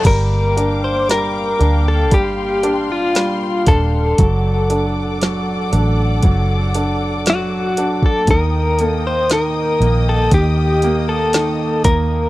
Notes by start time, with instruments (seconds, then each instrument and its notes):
0.04 fingered electric bass G1, grand piano G3, string section A#3 F5 G5 D6, clean electric guitar A#4, kick, closed hi-hat, crash
0.57 grand piano D4, closed hi-hat
0.84 clean electric guitar C5
1.09 grand piano G3, clean electric guitar A#4, snare, closed hi-hat
1.59 fingered electric bass D2, grand piano D4, closed hi-hat
1.88 clean electric guitar A4
2.11 fingered electric bass G1, grand piano G3, clean electric guitar G4, string section C6, kick, closed hi-hat
2.63 grand piano D4, closed hi-hat
2.92 clean electric guitar F4
3.15 grand piano G3, snare, closed hi-hat
3.66 fingered electric bass D#1, grand piano D4, clean electric guitar A4, kick, closed hi-hat
4.18 fingered electric bass F#1, grand piano F#3, string section A4 D5 F#5 D6, kick, closed hi-hat
4.70 grand piano D4, closed hi-hat
5.21 grand piano F#3, snare, closed hi-hat
5.73 fingered electric bass A1, grand piano D4, closed hi-hat
6.23 fingered electric bass F#1, grand piano F#3, kick, closed hi-hat
6.74 grand piano D4, closed hi-hat
7.26 grand piano F#3, clean electric guitar F#4, snare, closed hi-hat
7.77 grand piano D4, closed hi-hat
8.02 clean electric guitar A4, kick
8.27 fingered electric bass D#2, grand piano D#3, string section A#3 D#5 G5 D#6, clean electric guitar A#4, kick, closed hi-hat
8.79 grand piano A#3, closed hi-hat
8.84 clean electric guitar A4
9.07 clean electric guitar C5
9.30 grand piano D#3, clean electric guitar A#4, snare, closed hi-hat
9.80 fingered electric bass A#1, grand piano A#3, closed hi-hat
10.09 clean electric guitar A4
10.31 fingered electric bass D#2, grand piano D#3, clean electric guitar G4, kick, closed hi-hat
10.82 grand piano A#3, closed hi-hat
11.09 clean electric guitar A4
11.33 grand piano D#3, snare, closed hi-hat
11.84 fingered electric bass D#2, grand piano A#3, clean electric guitar A#4, kick, closed hi-hat